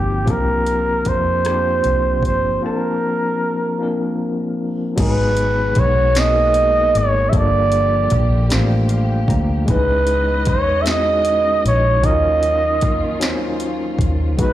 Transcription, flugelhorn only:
0.00 0.32 G4 medium
0.31 1.10 A#4 loud
1.08 2.25 C5 loud
2.26 2.61 C5 medium
2.65 4.17 A#4 medium
5.01 5.81 B4 medium
5.79 6.20 C#5 loud
6.19 6.99 D#5 loud
6.98 7.31 C#5 medium
7.29 7.39 E5 medium
7.37 8.53 D5 loud
9.71 10.51 B4 loud
10.49 10.83 C#5 loud
10.82 10.90 E5 medium
10.88 11.66 D#5 loud
11.66 12.07 C#5 medium
12.05 13.22 D#5 loud
14.41 14.53 B4 loud

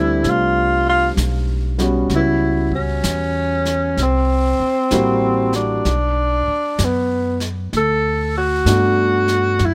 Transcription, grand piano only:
0.00 0.21 G3 soft
0.00 0.22 A3 soft
0.00 0.22 C4 soft
0.00 0.22 D4 medium
1.78 2.98 G3 medium
1.78 2.98 B3 medium
1.78 2.98 C#4 soft
1.78 2.99 F#4 medium
4.92 5.47 G3 medium
4.92 5.48 A#3 soft
4.92 5.48 E4 soft
4.92 5.48 F#4 medium
8.66 9.22 A3 medium
8.66 9.22 B3 soft
8.66 9.22 D4 soft
8.66 9.23 F#4 medium

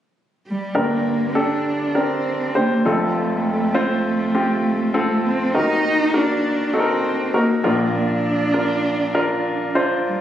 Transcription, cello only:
0.47 0.79 G3 medium
0.77 1.39 A#3 medium
1.38 1.98 D4 medium
1.97 2.59 C4 medium
2.58 2.88 A#3 medium
2.87 5.27 A3 medium
5.26 5.55 C4 medium
5.55 6.17 D#4 loud
6.15 6.77 D4 medium
6.75 7.35 C4 medium
7.35 7.63 A#3 medium
7.65 7.96 A#3 medium
7.95 9.75 D4 medium
10.07 10.21 G3 medium

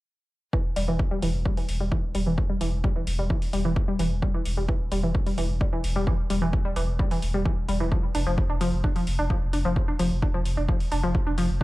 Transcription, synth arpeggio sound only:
0.53 0.60 E3 loud
0.76 0.87 G3 loud
0.88 0.95 E3 loud
1.11 1.22 G3 loud
1.22 1.30 E3 loud
1.46 1.56 G3 loud
1.57 1.64 E3 loud
1.80 1.91 G3 loud
1.92 1.99 E3 loud
2.15 2.26 G3 medium
2.26 2.33 E3 loud
2.50 2.60 G3 loud
2.61 2.68 E3 loud
2.84 2.95 G3 loud
2.96 3.03 E3 loud
3.19 3.29 G3 loud
3.30 3.37 E3 loud
3.53 3.64 G3 loud
3.65 3.72 E3 loud
3.88 3.99 G3 loud
3.99 4.07 E3 loud
4.22 4.33 G3 loud
4.34 4.41 E3 loud
4.57 4.68 G3 loud
4.68 4.76 E3 loud
4.92 5.03 G3 loud
5.03 5.10 E3 loud
5.26 5.37 G3 loud
5.38 5.45 E3 loud
5.61 5.72 G3 loud
5.73 5.80 E3 loud
5.96 6.06 G3 loud
6.07 6.14 E3 loud
6.30 6.41 G3 loud
6.42 6.49 E3 loud
6.65 6.75 G3 loud
6.76 6.84 E3 loud
6.99 7.10 G3 loud
7.11 7.18 E3 medium
7.34 7.45 G3 loud
7.45 7.53 E3 loud
7.68 7.79 G3 loud
7.80 7.87 E3 loud
7.92 7.99 F3 loud
8.15 8.19 D4 medium
8.26 8.33 F3 loud
8.50 8.54 D4 medium
8.61 8.68 F3 loud
8.84 8.88 D4 medium
8.96 9.03 F3 medium
9.19 9.23 D4 medium
9.30 9.37 F3 loud
9.53 9.58 D4 medium
9.65 9.72 F3 loud
9.88 9.92 D4 medium
9.99 10.07 F3 loud
10.22 10.27 D4 medium
10.34 10.41 F3 loud
10.57 10.61 D4 medium
10.68 10.76 F3 loud
10.92 10.96 D4 medium
11.03 11.10 F3 loud
11.27 11.31 D4 medium
11.38 11.45 F3 loud

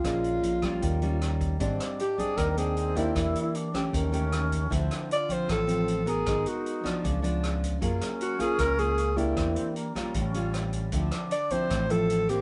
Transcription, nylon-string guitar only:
0.04 0.80 A#2 medium
0.04 0.59 G#3 medium
0.04 0.59 C#4 medium
0.04 0.59 F4 medium
0.62 0.98 G3 medium
0.62 0.98 C#4 medium
0.62 0.98 F4 medium
0.81 1.57 D#3 medium
1.02 1.57 G3 medium
1.02 1.57 C#4 medium
1.02 1.57 F4 medium
1.60 2.35 G#2 medium
1.60 1.98 G3 medium
1.60 1.99 C4 medium
1.60 1.99 D4 medium
2.18 2.54 G3 medium
2.18 2.54 C4 medium
2.18 2.54 D4 medium
2.37 3.13 D#3 medium
2.58 2.93 C4 medium
2.58 2.93 D4 medium
2.95 3.70 A#3 medium
2.95 3.70 D4 medium
2.95 3.70 G4 medium
3.15 3.91 E3 medium
3.74 4.09 A3 medium
3.74 4.09 C#4 medium
3.74 4.10 G4 medium
3.94 4.69 D#3 medium
4.12 4.67 A3 medium
4.12 4.68 C#4 medium
4.12 4.68 G4 medium
4.70 5.46 D3 medium
4.70 5.09 F3 medium
4.70 5.09 C4 medium
4.70 5.09 E4 medium
5.29 5.64 F3 medium
5.29 5.65 C4 medium
5.48 6.24 A2 medium
5.67 6.03 F3 medium
5.67 6.03 C4 medium
6.06 6.81 B3 medium
6.06 6.81 F#4 medium
6.06 6.81 A#4 medium
6.27 6.83 G#3 medium
6.84 7.20 F3 medium
6.84 7.20 B3 medium
6.84 7.20 D4 medium
7.03 7.79 C#3 medium
7.22 7.78 F3 medium
7.22 7.78 B3 medium
7.22 7.78 D4 medium
7.81 8.57 F#3 medium
7.81 8.36 A#3 medium
7.81 8.37 F4 medium
7.81 8.37 G#4 medium
8.39 8.75 A#3 medium
8.39 8.75 F4 medium
8.39 8.75 G#4 medium
8.58 9.34 C#3 medium
8.78 9.14 A#3 medium
8.78 9.14 F4 medium
8.78 9.14 G#4 medium
9.16 9.91 A#3 medium
9.16 9.92 D4 medium
9.16 9.92 G4 medium
9.37 9.95 E3 medium
9.95 10.31 G3 medium
9.95 10.31 C#4 medium
9.95 10.32 F4 medium
10.16 10.91 A2 medium
10.34 10.89 G3 medium
10.34 10.90 C#4 medium
10.34 10.90 F4 medium
10.93 11.68 D3 medium
10.93 11.31 F3 medium
10.93 11.31 C4 medium
10.93 11.32 E4 medium
11.51 11.86 F3 medium
11.51 11.87 C4 medium
11.51 11.87 E4 medium
11.70 12.41 A2 medium
11.89 12.25 F3 medium
11.89 12.25 C4 medium
11.89 12.26 E4 medium
12.29 12.41 E3 medium
12.29 12.41 A#3 medium
12.29 12.41 C4 medium

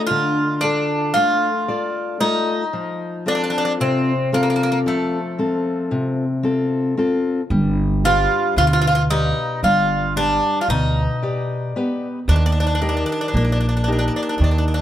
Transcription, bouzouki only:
0.07 0.62 F4 medium
0.61 1.16 D4 medium
1.14 2.16 F4 medium
2.21 3.23 D#4 medium
3.28 3.34 D4 medium
3.35 3.42 D4 medium
3.44 3.49 D4 medium
3.50 3.57 D4 medium
3.58 3.64 D4 medium
3.65 3.72 D4 medium
3.81 4.30 C4 medium
4.34 4.41 A#3 medium
4.43 4.49 A#3 medium
4.50 4.55 A#3 medium
4.56 4.62 A#3 medium
4.63 4.70 A#3 medium
4.72 4.78 A#3 medium
4.88 6.95 A3 medium
8.05 8.54 F4 loud
8.58 8.64 F4 loud
8.67 8.72 F4 medium
8.73 8.80 F4 medium
8.81 8.86 F4 medium
8.87 8.94 F4 medium
8.95 9.02 F4 medium
9.10 9.59 D#4 loud
9.64 10.13 F4 medium
10.17 10.59 D4 medium
10.61 10.68 F4 medium
10.70 12.24 D#4 medium
12.29 12.35 D4 medium
12.36 12.43 D4 medium
12.46 12.51 D4 medium
12.52 12.58 D4 medium
12.60 12.65 D4 medium
12.67 12.73 D4 medium
12.75 12.80 D4 medium
12.82 12.88 D4 medium
12.89 12.96 D4 medium
12.97 13.03 D4 medium
13.06 13.11 D4 medium
13.12 13.19 D4 medium
13.21 13.27 D4 medium
13.28 13.34 D4 medium
13.37 13.42 D4 medium
13.45 13.50 D4 soft
13.52 13.58 D4 medium
13.61 13.66 D4 soft
13.69 13.73 D4 medium
13.77 13.81 D4 soft
13.84 13.89 D4 medium
13.93 13.97 D4 soft
13.99 14.04 D4 medium
14.08 14.12 D4 medium
14.16 14.20 D4 medium
14.23 14.27 D4 soft
14.29 14.34 D4 medium
14.38 14.42 D4 soft
14.44 14.49 D4 medium
14.51 14.56 D4 soft
14.58 14.64 D4 soft
14.68 14.72 D4 soft
14.74 14.79 D4 medium

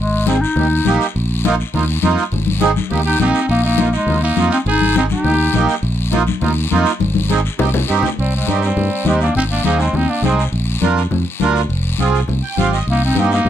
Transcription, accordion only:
0.26 0.37 C4 medium
0.26 0.37 D#4 medium
0.26 0.37 G#4 medium
0.57 0.67 A#3 medium
0.57 0.67 D#4 medium
0.57 0.68 G4 medium
0.86 1.07 A#3 medium
0.86 1.07 D#4 medium
0.86 1.07 G4 loud
1.45 1.55 A#3 medium
1.45 1.55 D#4 medium
1.45 1.56 F4 loud
1.75 1.84 A#3 medium
1.75 1.84 D#4 medium
1.75 1.85 F4 medium
2.03 2.24 A#3 medium
2.03 2.24 D#4 medium
2.03 2.24 F4 loud
2.61 2.71 C4 medium
2.61 2.72 D#4 medium
2.61 2.72 G#4 loud
2.90 3.01 A#3 medium
2.90 3.01 D#4 medium
2.90 3.01 G4 medium
3.19 3.40 A#3 medium
3.19 3.40 D#4 medium
3.19 3.40 G4 medium
3.78 3.89 A#3 medium
3.78 3.89 D#4 medium
3.78 3.89 F4 medium
4.07 4.18 A#3 medium
4.07 4.18 D#4 medium
4.07 4.18 F4 medium
4.37 4.58 A#3 medium
4.37 4.58 D#4 medium
4.37 4.58 F4 medium
4.96 5.06 C4 medium
4.96 5.06 D#4 medium
4.96 5.07 G#4 medium
5.25 5.35 A#3 medium
5.25 5.35 D#4 medium
5.25 5.36 G4 medium
5.55 5.75 A#3 medium
5.55 5.75 D#4 medium
5.55 5.75 G4 loud
6.12 6.23 A#3 loud
6.12 6.23 D#4 medium
6.12 6.23 F4 loud
6.42 6.52 A#3 medium
6.42 6.52 D#4 medium
6.42 6.53 F4 medium
6.71 6.92 A#3 medium
6.71 6.92 D#4 medium
6.71 6.92 F4 loud
7.30 7.40 C4 medium
7.30 7.40 D#4 medium
7.30 7.41 G#4 loud
7.59 7.69 C4 medium
7.59 7.70 D#4 medium
7.59 7.70 G4 medium
7.88 8.09 C4 medium
7.88 8.09 D#4 medium
7.88 8.10 G4 loud
8.47 8.68 C4 medium
8.47 8.68 D#4 medium
8.47 8.68 G4 medium
9.06 9.27 C4 medium
9.06 9.27 D#4 medium
9.06 9.27 G4 medium
9.65 9.86 C4 medium
9.65 9.86 D#4 medium
9.65 9.86 G#4 medium
10.23 10.44 C4 medium
10.23 10.44 D#4 medium
10.23 10.44 G#4 medium
10.82 11.02 D4 medium
10.82 11.03 F4 medium
10.82 11.03 A#4 loud
11.41 11.62 D4 medium
11.41 11.62 F4 medium
11.41 11.62 A#4 loud
12.00 12.20 C4 medium
12.00 12.20 F4 medium
12.00 12.20 G#4 medium
12.43 12.57 G5 medium
12.57 12.78 C4 medium
12.57 12.79 F4 medium
12.57 12.79 G4 medium
12.57 12.72 F5 medium
12.73 12.86 D#5 medium
13.16 13.37 C4 medium
13.16 13.38 D#4 medium
13.16 13.38 G4 medium

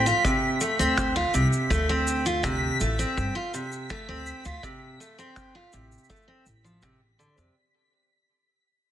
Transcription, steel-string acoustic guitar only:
0.06 0.22 F4 medium
0.25 0.59 C3 medium
0.61 0.77 A3 medium
0.79 1.14 C4 medium
1.16 1.32 F4 medium
1.34 1.69 C3 medium
1.71 1.87 A3 medium
1.89 2.24 C4 medium
2.26 2.42 F4 medium
2.44 2.79 C3 medium
2.81 2.97 A3 medium
2.99 3.33 C4 medium
3.35 3.52 F4 medium
3.54 3.88 C3 medium
3.90 4.07 A3 medium
4.09 4.43 C4 medium
4.45 4.62 F4 medium
4.63 4.98 C3 medium
5.00 5.16 A3 medium
5.19 5.53 C4 medium
5.55 5.71 F4 medium
5.73 6.08 C3 medium
6.10 6.26 A3 medium
6.28 6.44 C4 medium
6.64 6.82 F3 medium
6.83 6.99 C3 medium
7.19 7.36 D3 medium
7.38 7.54 C3 medium

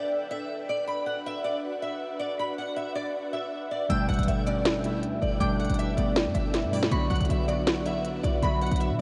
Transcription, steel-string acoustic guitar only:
0.31 0.66 E5 medium
0.69 0.84 D5 medium
0.88 1.02 B5 loud
1.06 1.21 F#5 medium
1.26 1.41 E5 medium
1.44 1.59 D5 medium
1.82 2.18 E5 medium
2.19 2.34 D5 medium
2.39 2.54 B5 medium
2.58 2.72 F#5 medium
2.76 2.91 E5 medium
2.95 3.10 D5 medium
3.33 3.68 E5 medium
3.71 3.85 D5 medium
3.90 4.04 G5 loud
4.08 4.23 F#5 medium
4.28 4.42 E5 medium
4.46 4.61 D5 medium
4.84 5.20 E5 medium
5.21 5.36 D5 medium
5.40 5.55 G5 medium
5.60 5.74 F#5 medium
5.79 5.93 E5 medium
5.97 6.12 D5 medium
6.34 6.70 E5 medium
6.73 6.87 D5 medium
6.91 7.06 B5 medium
7.10 7.25 F#5 medium
7.30 7.44 E5 medium
7.48 7.63 D5 medium
7.86 8.21 E5 medium
8.23 8.38 D5 medium
8.43 8.58 B5 medium
8.62 8.76 F#5 medium
8.80 8.95 E5 medium

